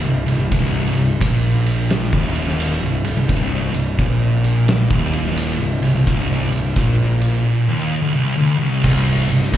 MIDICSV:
0, 0, Header, 1, 4, 480
1, 0, Start_track
1, 0, Key_signature, -3, "minor"
1, 0, Tempo, 693642
1, 355, Time_signature, 4, 2, 24, 8
1, 6624, End_track
2, 0, Start_track
2, 0, Title_t, "Distorted electric guitar"
2, 0, Program_c, 0, 30
2, 24, Note_on_c, 0, 36, 77
2, 171, Note_off_c, 0, 36, 0
2, 180, Note_on_c, 0, 36, 80
2, 257, Note_off_c, 0, 36, 0
2, 265, Note_on_c, 0, 36, 68
2, 342, Note_off_c, 0, 36, 0
2, 350, Note_on_c, 0, 36, 108
2, 654, Note_off_c, 0, 36, 0
2, 662, Note_on_c, 0, 36, 72
2, 800, Note_off_c, 0, 36, 0
2, 829, Note_on_c, 0, 46, 107
2, 1459, Note_off_c, 0, 46, 0
2, 1468, Note_on_c, 0, 39, 87
2, 1941, Note_off_c, 0, 39, 0
2, 1951, Note_on_c, 0, 36, 75
2, 2098, Note_off_c, 0, 36, 0
2, 2106, Note_on_c, 0, 36, 76
2, 2180, Note_off_c, 0, 36, 0
2, 2188, Note_on_c, 0, 36, 70
2, 2267, Note_off_c, 0, 36, 0
2, 2275, Note_on_c, 0, 36, 106
2, 2575, Note_off_c, 0, 36, 0
2, 2583, Note_on_c, 0, 36, 77
2, 2722, Note_off_c, 0, 36, 0
2, 2761, Note_on_c, 0, 46, 105
2, 3386, Note_off_c, 0, 46, 0
2, 3393, Note_on_c, 0, 39, 85
2, 3865, Note_off_c, 0, 39, 0
2, 3874, Note_on_c, 0, 36, 77
2, 4013, Note_off_c, 0, 36, 0
2, 4022, Note_on_c, 0, 36, 78
2, 4104, Note_off_c, 0, 36, 0
2, 4112, Note_on_c, 0, 36, 64
2, 4186, Note_off_c, 0, 36, 0
2, 4195, Note_on_c, 0, 36, 105
2, 4492, Note_off_c, 0, 36, 0
2, 4501, Note_on_c, 0, 36, 77
2, 4641, Note_off_c, 0, 36, 0
2, 4675, Note_on_c, 0, 46, 102
2, 5303, Note_off_c, 0, 46, 0
2, 5311, Note_on_c, 0, 39, 99
2, 5546, Note_off_c, 0, 39, 0
2, 5549, Note_on_c, 0, 38, 103
2, 5627, Note_off_c, 0, 38, 0
2, 5630, Note_on_c, 0, 36, 98
2, 5780, Note_off_c, 0, 36, 0
2, 5786, Note_on_c, 0, 38, 108
2, 5935, Note_off_c, 0, 38, 0
2, 5938, Note_on_c, 0, 36, 104
2, 6104, Note_off_c, 0, 36, 0
2, 6112, Note_on_c, 0, 36, 106
2, 6412, Note_off_c, 0, 36, 0
2, 6421, Note_on_c, 0, 36, 85
2, 6559, Note_off_c, 0, 36, 0
2, 6588, Note_on_c, 0, 46, 101
2, 6624, Note_off_c, 0, 46, 0
2, 6624, End_track
3, 0, Start_track
3, 0, Title_t, "Picked electric bass"
3, 0, Program_c, 1, 34
3, 24, Note_on_c, 1, 24, 81
3, 171, Note_off_c, 1, 24, 0
3, 178, Note_on_c, 1, 24, 72
3, 260, Note_off_c, 1, 24, 0
3, 266, Note_on_c, 1, 24, 78
3, 347, Note_off_c, 1, 24, 0
3, 357, Note_on_c, 1, 24, 95
3, 645, Note_off_c, 1, 24, 0
3, 659, Note_on_c, 1, 24, 71
3, 821, Note_off_c, 1, 24, 0
3, 841, Note_on_c, 1, 34, 89
3, 1447, Note_off_c, 1, 34, 0
3, 1473, Note_on_c, 1, 27, 86
3, 1925, Note_off_c, 1, 27, 0
3, 1947, Note_on_c, 1, 24, 82
3, 2094, Note_off_c, 1, 24, 0
3, 2101, Note_on_c, 1, 24, 74
3, 2183, Note_off_c, 1, 24, 0
3, 2190, Note_on_c, 1, 24, 83
3, 2271, Note_off_c, 1, 24, 0
3, 2279, Note_on_c, 1, 24, 87
3, 2567, Note_off_c, 1, 24, 0
3, 2580, Note_on_c, 1, 24, 70
3, 2742, Note_off_c, 1, 24, 0
3, 2757, Note_on_c, 1, 34, 92
3, 3366, Note_off_c, 1, 34, 0
3, 3393, Note_on_c, 1, 27, 94
3, 3846, Note_off_c, 1, 27, 0
3, 3872, Note_on_c, 1, 24, 75
3, 4017, Note_off_c, 1, 24, 0
3, 4029, Note_on_c, 1, 24, 74
3, 4108, Note_off_c, 1, 24, 0
3, 4117, Note_on_c, 1, 24, 85
3, 4195, Note_off_c, 1, 24, 0
3, 4201, Note_on_c, 1, 24, 79
3, 4489, Note_off_c, 1, 24, 0
3, 4506, Note_on_c, 1, 24, 73
3, 4666, Note_off_c, 1, 24, 0
3, 4679, Note_on_c, 1, 34, 91
3, 5131, Note_off_c, 1, 34, 0
3, 6119, Note_on_c, 1, 24, 96
3, 6407, Note_off_c, 1, 24, 0
3, 6428, Note_on_c, 1, 24, 75
3, 6585, Note_off_c, 1, 24, 0
3, 6598, Note_on_c, 1, 34, 93
3, 6624, Note_off_c, 1, 34, 0
3, 6624, End_track
4, 0, Start_track
4, 0, Title_t, "Drums"
4, 193, Note_on_c, 9, 51, 68
4, 262, Note_off_c, 9, 51, 0
4, 359, Note_on_c, 9, 36, 91
4, 359, Note_on_c, 9, 51, 94
4, 428, Note_off_c, 9, 36, 0
4, 428, Note_off_c, 9, 51, 0
4, 673, Note_on_c, 9, 51, 70
4, 743, Note_off_c, 9, 51, 0
4, 840, Note_on_c, 9, 36, 96
4, 844, Note_on_c, 9, 51, 102
4, 909, Note_off_c, 9, 36, 0
4, 913, Note_off_c, 9, 51, 0
4, 1152, Note_on_c, 9, 51, 75
4, 1221, Note_off_c, 9, 51, 0
4, 1317, Note_on_c, 9, 51, 96
4, 1322, Note_on_c, 9, 38, 102
4, 1386, Note_off_c, 9, 51, 0
4, 1391, Note_off_c, 9, 38, 0
4, 1473, Note_on_c, 9, 36, 102
4, 1542, Note_off_c, 9, 36, 0
4, 1630, Note_on_c, 9, 51, 73
4, 1699, Note_off_c, 9, 51, 0
4, 1718, Note_on_c, 9, 38, 36
4, 1787, Note_off_c, 9, 38, 0
4, 1799, Note_on_c, 9, 51, 99
4, 1868, Note_off_c, 9, 51, 0
4, 2108, Note_on_c, 9, 51, 76
4, 2177, Note_off_c, 9, 51, 0
4, 2279, Note_on_c, 9, 36, 99
4, 2279, Note_on_c, 9, 51, 79
4, 2348, Note_off_c, 9, 36, 0
4, 2348, Note_off_c, 9, 51, 0
4, 2591, Note_on_c, 9, 51, 65
4, 2660, Note_off_c, 9, 51, 0
4, 2760, Note_on_c, 9, 36, 91
4, 2760, Note_on_c, 9, 51, 88
4, 2829, Note_off_c, 9, 36, 0
4, 2829, Note_off_c, 9, 51, 0
4, 3073, Note_on_c, 9, 51, 59
4, 3142, Note_off_c, 9, 51, 0
4, 3239, Note_on_c, 9, 51, 79
4, 3245, Note_on_c, 9, 38, 108
4, 3308, Note_off_c, 9, 51, 0
4, 3314, Note_off_c, 9, 38, 0
4, 3395, Note_on_c, 9, 36, 103
4, 3464, Note_off_c, 9, 36, 0
4, 3551, Note_on_c, 9, 51, 58
4, 3620, Note_off_c, 9, 51, 0
4, 3644, Note_on_c, 9, 38, 37
4, 3713, Note_off_c, 9, 38, 0
4, 3719, Note_on_c, 9, 51, 90
4, 3788, Note_off_c, 9, 51, 0
4, 4031, Note_on_c, 9, 51, 60
4, 4100, Note_off_c, 9, 51, 0
4, 4201, Note_on_c, 9, 36, 95
4, 4203, Note_on_c, 9, 51, 85
4, 4270, Note_off_c, 9, 36, 0
4, 4272, Note_off_c, 9, 51, 0
4, 4512, Note_on_c, 9, 51, 69
4, 4582, Note_off_c, 9, 51, 0
4, 4677, Note_on_c, 9, 51, 86
4, 4681, Note_on_c, 9, 36, 93
4, 4747, Note_off_c, 9, 51, 0
4, 4750, Note_off_c, 9, 36, 0
4, 4992, Note_on_c, 9, 51, 67
4, 5061, Note_off_c, 9, 51, 0
4, 6117, Note_on_c, 9, 49, 113
4, 6119, Note_on_c, 9, 36, 96
4, 6186, Note_off_c, 9, 49, 0
4, 6188, Note_off_c, 9, 36, 0
4, 6427, Note_on_c, 9, 51, 75
4, 6496, Note_off_c, 9, 51, 0
4, 6518, Note_on_c, 9, 38, 36
4, 6587, Note_off_c, 9, 38, 0
4, 6599, Note_on_c, 9, 36, 100
4, 6599, Note_on_c, 9, 51, 105
4, 6624, Note_off_c, 9, 36, 0
4, 6624, Note_off_c, 9, 51, 0
4, 6624, End_track
0, 0, End_of_file